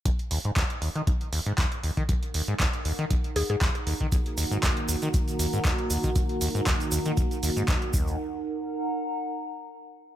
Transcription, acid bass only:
X:1
M:4/4
L:1/16
Q:"Swing 16ths" 1/4=118
K:Ebm
V:1 name="Acid bass" clef=bass
E,, z E,, A,, E,, z E,, E, E,, z E,, A,, E,, z E,, E, | E,, z E,, A,, E,, z E,, E, E,, z E,, A,, E,, z E,, E, | E,, z E,, A,, E,, z E,, E, E,, z E,, A,, E,, z E,, E, | E,, z E,, A,, E,, z E,, E, E,, z E,, A,, E,, z E,,2 |
z16 |]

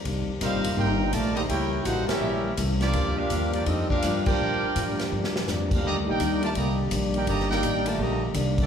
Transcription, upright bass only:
X:1
M:4/4
L:1/8
Q:"Swing" 1/4=166
K:Gm
V:1 name="Upright bass" clef=bass
C,, z (3B,,, G,,, E,,, G,,,2 B,,,2 | ^C,,2 A,,, z ^A,,,2 =C,,2 | D,,2 E,,2 F,,2 G,,2 | B,, z A,,2 G,,2 F,,2 |
(3E,, D,, B,,, D,,2 C,,2 B,,,2 | G,,,2 A,,,2 B,,,2 C,,2 |]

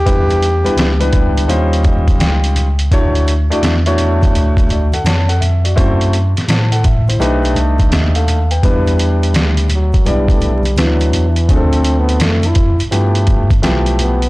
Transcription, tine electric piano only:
X:1
M:4/4
L:1/16
Q:"Swing 16ths" 1/4=84
K:Em
V:1 name="Tine electric piano" clef=bass
E,,3 ^C,, C,,4 ^D,,4 C,,4 | D,,3 E,, E,,4 D,,3 z =F,,4 | F,,3 A,, A,,4 B,,,2 C,,2 ^D,,4 | E,,4 D,,3 B,,, B,,,4 D,,2 E,,2 |
D,,4 =F,,3 G,, G,,4 B,,,4 |]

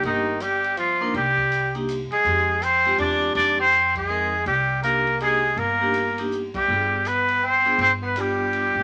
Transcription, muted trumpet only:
X:1
M:3/4
L:1/16
Q:"Swing" 1/4=162
K:Cm
V:1 name="Muted trumpet"
E4 G4 F4 | G6- G z3 A2- | A4 c4 d4 | d2 c4 A6 |
G4 B4 A4 | B6- B z3 G2- | G4 =B4 c4 | c2 =B2 G8 |]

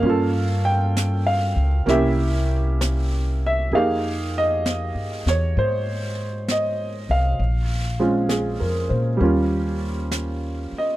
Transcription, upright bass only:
X:1
M:4/4
L:1/8
Q:"Swing" 1/4=66
K:Fm
V:1 name="Upright bass" clef=bass
G,,3 D,, C,,4 | F,,2- (3F,, G,, =E,, A,,3 C,, | B,,,2- (3B,,, F,, B,, E,,3 z |]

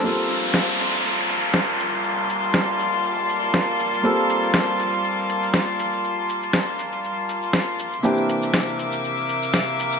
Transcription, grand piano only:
X:1
M:4/4
L:1/8
Q:"Swing 16ths" 1/4=120
K:Gdor
V:1 name="Grand piano"
[G,B,CFA]8- | [G,B,CFA]8 | [G,B,CFA]8- | [G,B,CFA]8 |
[E,B,CDG]8 |]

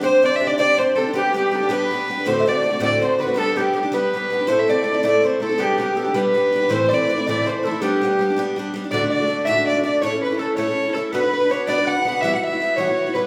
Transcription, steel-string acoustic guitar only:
X:1
M:6/8
L:1/16
Q:3/8=109
K:G
V:1 name="Steel-string acoustic guitar"
[CDGc]2 [CDGc]2 [CDGc] [DGc] [CDGc]2 [CDGc]2 [CDGc] [DGc] | [G,B,DG]2 [G,B,DG]2 [G,B,DG] [B,DG] [G,B,DG]2 [G,B,DG]2 [G,B,DG] [B,DG] | [D,,A,,D,A,CF]2 [D,A,CF]2 [D,A,CF] [D,A,CF] [D,,A,,D,A,CF]2 [D,A,CF]2 [D,A,CF] [D,A,CF] | [G,B,DG]2 [G,B,DG]2 [G,B,DG] [B,DG] [G,B,DG]2 [G,B,DG]2 [G,B,DG] [B,DG] |
[A,,A,CEA]2 [A,CEA]2 [A,CEA] [CEA] [A,,A,CEA]2 [A,CEA]2 [A,CEA] [CEA] | [G,B,DG]2 [G,B,DG]2 [G,B,DG] [B,DG] [G,B,DG]2 [G,B,DG]2 [G,B,DG] [B,DG] | [A,,E,A,CE]2 [E,A,CE]2 [E,A,CE] [A,CE] [A,,E,A,CE]2 [E,A,CE]2 [E,A,CE] [A,CE] | [G,B,DG]2 [G,B,DG]2 [G,B,DG] [B,DG] [G,B,DG]2 [G,B,DG]2 [G,B,DG] [B,DG] |
[K:D] [D,,A,,D,A,DF] [D,A,DF]2 [D,A,DF] [D,A,DF]2 [D,,A,,D,A,DF] [D,A,DF]2 [D,A,DF] [D,A,DF]2 | [A,,A,CEA] [CEA]2 [CEA] [A,CEA]2 [A,,A,CEA] [CEA]2 [CEA] [A,CEA]2 | [B,DFB] [DFB]2 [DFB] [B,DFB]2 [B,DFB] [DFB]2 [DFB] [B,DFB]2 | [E,G,B,EF] [B,EF]2 [B,EF] [G,B,EF]2 [E,G,B,EF] [B,EF]2 [B,EF] [G,B,EF]2 |]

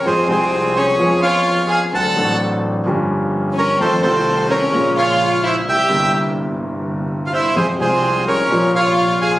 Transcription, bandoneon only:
X:1
M:4/4
L:1/16
Q:1/4=128
K:Fm
V:1 name="Bandoneon"
[Ac]2 [Ac]4 [Ad]4 [df]4 [fa]2 | [^f=a]4 z8 z2 [Bd]2 | [=Ac]2 [Ac]4 [Bd]4 [df]4 [c=e]2 | [=eg]4 z8 z3/2 f/2 [ce]2 |
[Ac]2 [Ac]4 [Bd]4 [df]4 [fa]2 |]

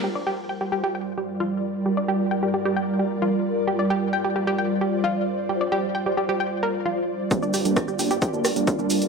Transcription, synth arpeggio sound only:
X:1
M:4/4
L:1/16
Q:1/4=132
K:Gm
V:1 name="Synth arpeggio sound"
G d G z g G G G g z G z F z3 | G d G z g G G G g z G z F z3 | G d G z g G G G g z G z F z3 | G d G z g G G G g z B z F z3 |
G d G z g G G G g z G z F z3 |]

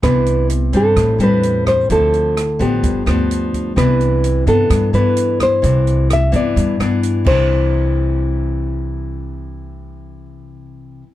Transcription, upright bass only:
X:1
M:4/4
L:1/8
Q:1/4=129
K:C
V:1 name="Upright bass" clef=bass
C,,3 G,, A,,, E,,3 | D,,3 A,,, G,,, D,,3 | C,,3 G,, G,, G,,3 | C,,3 G,, G,, G,,2 C,,- |
C,,8- | C,,8 |]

